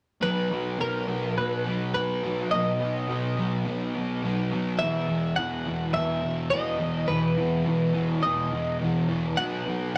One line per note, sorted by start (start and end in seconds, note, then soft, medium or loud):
0.21 0.77 B2 medium
0.21 0.52 F#3 medium
0.21 0.50 B3 medium
0.21 0.81 B4 medium
0.50 0.79 F#3 medium
0.50 0.80 B3 medium
0.78 1.35 B2 medium
0.78 1.09 F#3 medium
0.78 1.06 B3 medium
0.78 1.37 A#4 medium
1.07 1.36 F#3 medium
1.07 1.38 B3 medium
1.36 1.93 B2 medium
1.36 1.67 F#3 medium
1.36 1.65 B3 medium
1.36 1.93 B4 medium
1.65 1.94 F#3 medium
1.65 1.96 B3 medium
1.94 2.51 B2 medium
1.94 2.25 F#3 medium
1.94 2.23 B3 medium
1.94 2.51 B4 medium
2.23 2.52 F#3 medium
2.23 2.54 B3 medium
2.51 3.07 B2 medium
2.51 2.82 F#3 medium
2.51 2.80 B3 medium
2.51 4.48 D#5 medium
2.80 3.08 F#3 medium
2.80 3.11 B3 medium
3.08 3.65 B2 medium
3.08 3.38 F#3 medium
3.08 3.36 B3 medium
3.37 3.66 F#3 medium
3.37 3.68 B3 medium
3.66 4.21 B2 medium
3.66 3.96 F#3 medium
3.66 3.94 B3 medium
3.95 4.23 F#3 medium
3.95 4.25 B3 medium
4.23 4.79 B2 medium
4.23 4.53 F#3 medium
4.23 4.51 B3 medium
4.52 4.80 F#3 medium
4.52 8.02 B3 medium
4.79 5.36 E2 medium
4.79 5.08 B2 medium
4.79 5.36 E5 medium
4.83 5.07 E3 medium
5.08 5.36 B2 medium
5.08 5.38 E3 medium
5.36 5.94 E2 medium
5.36 5.67 B2 medium
5.36 5.65 E3 medium
5.36 5.93 F#5 medium
5.65 5.94 B2 medium
5.65 5.95 E3 medium
5.94 6.50 E2 medium
5.94 6.24 B2 medium
5.94 6.21 E3 medium
5.94 6.50 E5 medium
6.23 6.51 B2 medium
6.23 6.52 E3 medium
6.50 7.07 E2 medium
6.50 6.81 B2 medium
6.50 6.78 E3 medium
6.50 7.10 D#5 medium
6.79 7.08 B2 medium
6.79 7.09 E3 medium
7.08 7.64 E2 medium
7.08 7.38 B2 medium
7.08 7.36 E3 medium
7.08 8.27 B4 medium
7.37 7.66 B2 medium
7.37 7.67 E3 medium
7.65 8.22 E2 medium
7.65 7.95 B2 medium
7.65 7.93 E3 medium
7.94 8.23 B2 medium
7.94 8.24 E3 medium
8.23 8.79 E2 medium
8.23 8.53 B2 medium
8.23 8.51 E3 medium
8.23 8.77 D#5 medium
8.52 8.81 B2 medium
8.52 8.82 E3 medium
8.81 9.36 E2 medium
8.81 9.10 B2 medium
8.81 9.08 E3 medium
9.09 9.36 B2 soft
9.09 9.36 E3 medium
9.37 9.94 B2 medium
9.37 9.68 F#3 medium
9.37 9.66 B3 medium
9.37 9.95 F#5 medium
9.66 9.96 F#3 medium
9.66 9.97 B3 medium
9.94 9.98 B2 medium